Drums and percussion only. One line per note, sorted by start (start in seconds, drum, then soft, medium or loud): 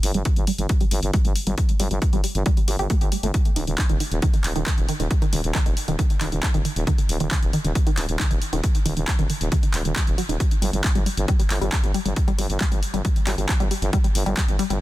0.03 open hi-hat loud
0.14 closed hi-hat medium
0.25 kick loud
0.25 closed hi-hat medium
0.36 closed hi-hat medium
0.47 open hi-hat loud
0.58 closed hi-hat medium
0.69 kick loud
0.69 closed hi-hat medium
0.80 closed hi-hat medium
0.91 open hi-hat loud
1.03 closed hi-hat medium
1.13 kick loud
1.13 closed hi-hat medium
1.25 closed hi-hat medium
1.35 open hi-hat loud
1.47 closed hi-hat medium
1.58 kick loud
1.58 closed hi-hat medium
1.69 closed hi-hat medium
1.80 open hi-hat loud
1.91 closed hi-hat medium
2.02 kick loud
2.02 closed hi-hat medium
2.13 closed hi-hat medium
2.24 open hi-hat loud
2.35 closed hi-hat medium
2.46 kick loud
2.46 closed hi-hat medium
2.57 closed hi-hat medium
2.68 open hi-hat loud
2.79 closed hi-hat soft
2.90 kick loud
2.90 closed hi-hat medium
3.01 closed hi-hat medium
3.12 open hi-hat loud
3.23 closed hi-hat medium
3.34 kick loud
3.34 closed hi-hat medium
3.45 closed hi-hat medium
3.56 open hi-hat loud
3.67 closed hi-hat soft
3.78 kick loud
3.78 clap loud
3.78 closed hi-hat medium
3.89 closed hi-hat soft
4.00 open hi-hat medium
4.11 closed hi-hat medium
4.22 kick loud
4.22 closed hi-hat medium
4.33 closed hi-hat soft
4.44 clap medium
4.44 open hi-hat loud
4.56 closed hi-hat soft
4.66 kick loud
4.66 clap loud
4.66 closed hi-hat medium
4.78 closed hi-hat soft
4.89 open hi-hat medium
5.00 closed hi-hat medium
5.11 kick loud
5.11 closed hi-hat medium
5.22 closed hi-hat soft
5.33 open hi-hat loud
5.44 closed hi-hat soft
5.55 kick loud
5.55 clap loud
5.55 closed hi-hat medium
5.66 closed hi-hat medium
5.77 open hi-hat medium
5.88 closed hi-hat soft
5.99 kick loud
5.99 closed hi-hat medium
6.10 closed hi-hat soft
6.21 clap medium
6.21 open hi-hat loud
6.32 closed hi-hat soft
6.43 kick loud
6.43 clap loud
6.43 closed hi-hat medium
6.54 closed hi-hat soft
6.65 open hi-hat medium
6.76 closed hi-hat soft
6.87 kick loud
6.87 closed hi-hat medium
6.98 closed hi-hat medium
7.09 open hi-hat loud
7.20 closed hi-hat soft
7.31 kick loud
7.31 clap loud
7.31 closed hi-hat medium
7.43 closed hi-hat medium
7.53 open hi-hat medium
7.65 closed hi-hat medium
7.75 kick loud
7.75 closed hi-hat medium
7.87 closed hi-hat medium
7.97 clap medium
7.97 open hi-hat loud
8.09 closed hi-hat soft
8.19 kick loud
8.19 clap loud
8.19 closed hi-hat medium
8.31 closed hi-hat medium
8.42 open hi-hat medium
8.53 closed hi-hat medium
8.64 kick loud
8.64 closed hi-hat medium
8.75 closed hi-hat medium
8.86 open hi-hat loud
8.97 closed hi-hat medium
9.08 kick loud
9.08 clap loud
9.08 closed hi-hat medium
9.19 closed hi-hat medium
9.30 open hi-hat medium
9.41 closed hi-hat medium
9.52 kick loud
9.52 closed hi-hat medium
9.63 closed hi-hat medium
9.74 clap medium
9.74 open hi-hat loud
9.85 closed hi-hat medium
9.96 kick loud
9.96 clap loud
9.96 closed hi-hat medium
10.07 closed hi-hat medium
10.18 open hi-hat medium
10.29 closed hi-hat medium
10.40 kick loud
10.40 closed hi-hat loud
10.51 closed hi-hat medium
10.62 open hi-hat loud
10.73 closed hi-hat medium
10.84 kick loud
10.84 clap loud
10.84 closed hi-hat medium
10.95 closed hi-hat medium
11.06 open hi-hat medium
11.17 closed hi-hat medium
11.28 kick loud
11.28 closed hi-hat medium
11.40 closed hi-hat medium
11.50 clap medium
11.50 open hi-hat loud
11.62 closed hi-hat medium
11.72 kick loud
11.72 clap loud
11.72 closed hi-hat loud
11.84 closed hi-hat medium
11.94 open hi-hat medium
12.06 closed hi-hat medium
12.16 kick loud
12.16 closed hi-hat loud
12.28 closed hi-hat medium
12.39 open hi-hat loud
12.50 closed hi-hat medium
12.60 kick loud
12.60 clap loud
12.60 closed hi-hat medium
12.72 closed hi-hat medium
12.83 open hi-hat loud
12.94 closed hi-hat medium
13.05 kick loud
13.05 closed hi-hat medium
13.16 closed hi-hat medium
13.27 clap medium
13.27 open hi-hat loud
13.38 closed hi-hat medium
13.49 kick loud
13.49 clap loud
13.49 closed hi-hat medium
13.60 closed hi-hat medium
13.71 open hi-hat medium
13.82 closed hi-hat medium
13.93 kick loud
13.93 closed hi-hat medium
14.04 closed hi-hat medium
14.15 open hi-hat loud
14.26 closed hi-hat medium
14.37 kick loud
14.37 clap loud
14.37 closed hi-hat loud
14.48 closed hi-hat medium
14.59 open hi-hat loud
14.70 closed hi-hat medium